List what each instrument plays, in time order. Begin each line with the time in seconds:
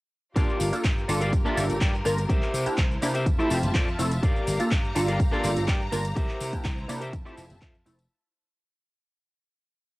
0.36 slap bass G2, analog polysynth A#3 D4 F4 A5, string section F4 G4 A#4, clean electric guitar G4 A#4 D5 F5, kick, closed hi-hat, tambourine, cabasa
0.49 cabasa
0.60 slap bass G1, open hi-hat, tambourine, cabasa
0.72 analog polysynth A#3 D4 F4 A4, muted slap bass stroke, closed hi-hat, tambourine, cabasa
0.84 slap bass G2, kick, clap, closed hi-hat, tambourine, cabasa
0.98 cabasa
1.08 slap bass G1, analog polysynth A#3 D4 F4 A4, muted clean electric guitar stroke, open hi-hat, tambourine, cabasa
1.20 clean electric guitar G4 A#4 D5 F5, closed hi-hat, tambourine, cabasa
1.33 slap bass G2, kick, closed hi-hat, tambourine, cabasa
1.45 analog polysynth A#3 D4 F4 A4, clean electric guitar G4 A#4 D5 E5, cabasa
1.57 slap bass G1, analog polysynth A#3 D4 F4 A4, open hi-hat, tambourine, cabasa
1.70 slap bass G1, closed hi-hat, tambourine, cabasa
1.81 slap bass G2, clean electric guitar G4 A#4 D5 G5, kick, clap, closed hi-hat, tambourine, cabasa
1.95 cabasa
2.05 slap bass G1, analog polysynth A#3 D4 F4 A#4, muted clean electric guitar stroke, open hi-hat, tambourine, cabasa
2.18 closed hi-hat, tambourine, cabasa
2.29 slap bass C2, string section E4 C5, clean electric guitar G4 A#4 C5 E5, kick, closed hi-hat, tambourine, cabasa
2.42 clap, cabasa
2.54 slap bass C3, open hi-hat, tambourine, cabasa
2.66 analog polysynth A#3 D4 E4 G4, muted slap bass stroke, closed hi-hat, tambourine, cabasa
2.78 slap bass C2, kick, clap, closed hi-hat, cabasa
2.91 cabasa
3.02 slap bass C3, analog polysynth A#3 D4 E4 G4, muted clean electric guitar stroke, open hi-hat, tambourine, cabasa
3.14 clean electric guitar G4 A#4 C5 E5, closed hi-hat, tambourine, cabasa
3.26 slap bass F2, string section F4 E5 A5, kick, closed hi-hat, tambourine, cabasa
3.38 analog polysynth A3 C4 E4 G4, clean electric guitar F4 A4 C5 E5, muted slap bass stroke, cabasa
3.50 slap bass F1, analog polysynth A3 C4 E4 G4, open hi-hat, tambourine, cabasa
3.63 slap bass F1, closed hi-hat, tambourine, cabasa
3.74 slap bass F2, clean electric guitar F4 A4 C5 D5, kick, clap, closed hi-hat, tambourine, cabasa
3.88 cabasa
3.99 slap bass F1, analog polysynth A3 C4 E4 A4, muted clean electric guitar stroke, open hi-hat, tambourine, cabasa
4.12 closed hi-hat, tambourine, cabasa
4.23 clean electric guitar G4 A#4 D5 F5, string section G4 F5 A#5, kick, closed hi-hat, cabasa
4.36 cabasa
4.47 slap bass G1, open hi-hat, tambourine, cabasa
4.59 analog polysynth A#3 D4 F4 A4, muted slap bass stroke, closed hi-hat, tambourine, cabasa
4.71 slap bass G2, kick, clap, closed hi-hat, cabasa
4.84 cabasa
4.95 slap bass G1, analog polysynth A#3 D4 F4 A4, muted clean electric guitar stroke, open hi-hat, tambourine, cabasa
5.07 clean electric guitar G4 A#4 D5 F5, closed hi-hat, tambourine, cabasa
5.20 slap bass G2, kick, closed hi-hat, tambourine, cabasa
5.31 analog polysynth A#3 D4 F4 A4, clean electric guitar G4 A#4 D5 F5, cabasa
5.44 slap bass G1, analog polysynth A#3 D4 F4 A4, open hi-hat, tambourine, cabasa
5.56 slap bass G1, closed hi-hat, tambourine, cabasa
5.67 slap bass G2, clean electric guitar G4 A#4 D5 G5, kick, clap, closed hi-hat, tambourine, cabasa
5.81 cabasa
5.91 slap bass G1, analog polysynth A#3 D4 F4 A#4, muted clean electric guitar stroke, open hi-hat, tambourine, cabasa
6.05 closed hi-hat, tambourine, cabasa
6.16 slap bass C2, string section E4 C5, clean electric guitar G4 A#4 C5 E5, kick, closed hi-hat, tambourine, cabasa
6.29 clap, cabasa
6.41 slap bass C3, open hi-hat, tambourine, cabasa
6.53 analog polysynth A#3 D4 E4 G4, muted slap bass stroke, kick, closed hi-hat, tambourine, cabasa
6.65 slap bass C2, kick, clap, closed hi-hat, tambourine, cabasa
6.78 cabasa
6.88 slap bass C3, analog polysynth A#3 D4 E4 G4, muted clean electric guitar stroke, open hi-hat, tambourine, cabasa
7.01 clean electric guitar G4 A#4 C5 E5, closed hi-hat, tambourine, cabasa
7.13 slap bass F2, string section F4 E5 A5, kick, closed hi-hat, tambourine, cabasa
7.25 analog polysynth A3 C4 E4 G4, clean electric guitar F4 A4 C5 E5, cabasa
7.37 slap bass F1, analog polysynth A3 C4 E4 G4, open hi-hat, tambourine, cabasa
7.50 slap bass F1, closed hi-hat, tambourine, cabasa
7.61 slap bass F2, clean electric guitar F4 A4 C5 E5, kick, clap, closed hi-hat, cabasa
7.75 cabasa
7.86 slap bass F1, analog polysynth A3 C4 E4 A4, muted clean electric guitar stroke, open hi-hat, tambourine, cabasa
7.99 closed hi-hat, tambourine, cabasa